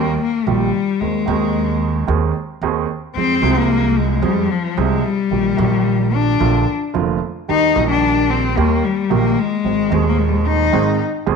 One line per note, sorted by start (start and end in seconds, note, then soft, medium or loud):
0.00 0.15 D#2 medium
0.00 0.15 D#3 medium
0.00 0.15 G3 medium
0.00 0.15 A#3 medium
0.00 0.20 A#3 medium
0.00 0.15 G4 medium
0.22 0.48 A#3 medium
0.47 0.69 A#1 medium
0.47 0.70 A#2 medium
0.47 0.69 D#3 medium
0.47 1.02 G3 medium
0.47 0.69 G3 medium
0.47 0.69 A#3 medium
0.47 0.70 G4 medium
1.00 1.23 D#2 medium
1.00 1.24 D#2 medium
1.00 1.24 D#3 soft
1.00 2.08 G#3 medium
1.00 1.24 A#3 soft
1.00 1.24 C4 soft
1.00 1.24 G#4 soft
1.27 2.04 D#2 medium
1.27 2.05 D#3 medium
1.27 2.04 A#3 medium
1.27 2.05 C4 medium
1.27 2.06 G#4 medium
2.07 2.31 D#2 medium
2.07 2.31 D#3 medium
2.07 2.31 A#3 medium
2.07 2.31 C4 medium
2.07 2.31 G#4 medium
2.61 2.84 D#2 medium
2.61 2.85 D#2 medium
2.61 2.85 D#3 medium
2.61 2.85 A#3 medium
2.61 2.85 C4 medium
2.61 2.85 G#4 medium
3.15 3.38 F2 medium
3.15 3.39 F2 medium
3.15 3.39 F3 medium
3.15 3.39 G#3 soft
3.15 3.59 C4 medium
3.15 3.39 C4 soft
3.15 3.39 G#4 soft
3.41 4.19 C2 medium
3.41 4.19 C3 medium
3.41 4.18 F3 medium
3.41 4.19 G#3 medium
3.41 4.19 C4 medium
3.41 4.20 G#4 medium
3.58 3.99 A#3 medium
3.98 4.27 G#3 medium
4.22 4.45 F2 medium
4.22 4.46 F2 medium
4.22 4.46 F3 medium
4.22 4.52 G3 medium
4.22 4.46 G#3 medium
4.22 4.45 C4 medium
4.22 4.46 G#4 medium
4.51 4.80 F3 medium
4.77 5.00 C2 medium
4.77 5.00 C3 medium
4.77 5.00 F3 medium
4.77 5.00 G#3 medium
4.77 5.07 G#3 medium
4.77 5.00 C4 medium
4.77 5.00 G#4 medium
5.05 6.16 G3 medium
5.30 5.54 A#1 medium
5.30 5.54 A#2 medium
5.30 5.54 D#3 soft
5.30 5.54 G3 soft
5.30 5.54 A#3 soft
5.30 5.54 G4 soft
5.57 6.36 A#1 medium
5.57 6.36 A#2 medium
5.57 6.35 D#3 medium
5.57 6.36 G3 medium
5.57 6.37 A#3 medium
5.61 6.37 G4 medium
6.14 6.68 D4 medium
6.40 6.63 A#1 medium
6.40 6.63 A#2 medium
6.40 6.63 D3 medium
6.40 6.63 F3 medium
6.40 6.63 A#3 medium
6.40 6.63 F4 medium
6.94 7.17 F1 medium
6.94 7.17 F2 medium
6.94 7.17 D3 medium
6.94 7.17 F3 medium
6.94 7.17 A#3 medium
6.94 7.17 F4 medium
7.48 7.71 D#2 medium
7.48 7.72 D#2 soft
7.48 7.72 D#3 medium
7.48 7.71 G3 soft
7.48 7.72 A#3 soft
7.48 7.87 D#4 loud
7.48 7.72 G4 soft
7.74 8.53 A#1 medium
7.74 8.53 A#2 medium
7.74 8.52 D#3 medium
7.74 8.53 G3 medium
7.74 8.53 A#3 medium
7.78 8.54 G4 medium
7.91 8.32 D4 medium
8.30 8.58 C4 medium
8.57 8.80 D#2 medium
8.57 8.80 D#3 medium
8.57 8.80 G3 medium
8.57 8.86 A#3 medium
8.57 8.80 A#3 medium
8.57 8.80 G4 medium
8.84 9.12 G3 medium
9.10 9.34 A#1 medium
9.10 9.34 A#2 medium
9.10 9.34 D#3 medium
9.10 9.34 G3 medium
9.10 9.34 A#3 medium
9.10 9.40 A#3 medium
9.10 9.34 G4 medium
9.38 10.11 G#3 medium
9.64 9.87 G#1 medium
9.64 9.88 G#1 medium
9.64 9.88 G#2 medium
9.64 9.88 D#3 soft
9.64 9.88 G#3 soft
9.64 9.88 C4 soft
9.64 9.88 G#4 medium
9.90 10.69 D#1 medium
9.90 10.69 D#2 loud
9.90 10.69 D#2 medium
9.90 10.68 D#3 medium
9.90 10.69 G#3 medium
9.90 10.70 C4 medium
9.94 10.70 G#4 medium
10.09 10.20 A#3 medium
10.19 10.30 G#3 medium
10.28 10.38 G3 medium
10.37 10.48 G#3 medium
10.47 11.00 D#4 medium
10.72 10.96 G#1 medium
10.72 10.96 G#2 medium
10.72 10.96 D#3 medium
10.72 10.96 G#3 medium
10.72 10.96 C4 medium
10.72 10.96 G#4 medium
11.26 11.36 D#1 medium
11.26 11.36 D#2 medium
11.26 11.36 D#3 medium
11.26 11.36 G#3 medium
11.26 11.36 C4 medium
11.26 11.36 G#4 medium